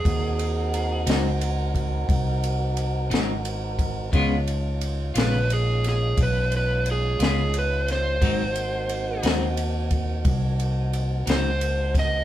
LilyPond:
<<
  \new Staff \with { instrumentName = "Electric slide guitar" } { \time 12/8 \key aes \mixolydian \tempo 4. = 59 aes'4. r1 r8 | r4. ces''8 aes'8 aes'8 ces''8 ces''8 aes'8 aes'8 ces''8 c''8~ | c''4. r2. c''4 ees''8 | }
  \new Staff \with { instrumentName = "Tonewheel organ" } { \time 12/8 \key aes \mixolydian <c' ees' ges' bes'>1. | <aes des' ees' f'>1. | <bes c' ees' ges'>1. | }
  \new Staff \with { instrumentName = "Clean electric guitar" } { \time 12/8 \key aes \mixolydian r4. <aes, ges c' ees'>8 r2 r8 <aes, ges c' ees'>8 r4 | <des aes ces' f'>8 r4 <des aes ces' f'>8 r2 r8 <des aes ces' f'>8 r4 | <aes, ges c' ees'>8 r4 <aes, ges c' ees'>8 r2 r8 <aes, ges c' ees'>8 r4 | }
  \new Staff \with { instrumentName = "Fingered electric bass" } { \clef bass \time 12/8 \key aes \mixolydian ees,4. des,4. c,4. aes,,4. | des,4. bes,,4. ces,4. des,4. | aes,,4. ees,4. c,4. des,4. | }
  \new DrumStaff \with { instrumentName = "Drums" } \drummode { \time 12/8 <bd cymr>8 cymr8 cymr8 <cymr sn>8 cymr8 <bd cymr>8 <bd cymr>8 cymr8 cymr8 <cymr sn>8 cymr8 <bd cymr>8 | <bd cymr>8 cymr8 cymr8 <cymr sn>8 cymr8 <cymr sn>8 <bd cymr>8 cymr8 cymr8 <cymr sn>8 cymr8 <cymr sn>8 | <bd cymr>8 cymr8 cymr8 <cymr sn>8 cymr8 <bd cymr>8 <bd cymr>8 cymr8 cymr8 <cymr sn>8 cymr8 <bd cymr sn>8 | }
>>